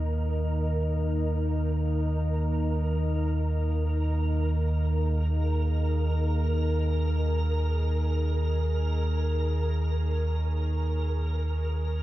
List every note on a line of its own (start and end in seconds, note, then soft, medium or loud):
0.00 12.03 D#2 medium
0.00 12.03 D#3 medium
0.00 12.03 A#3 medium
0.00 12.03 D#4 medium
0.00 4.70 A#4 medium
0.00 12.03 A#4 medium
0.00 9.45 D#5 medium
4.44 12.03 G#4 medium
9.19 12.03 C#5 medium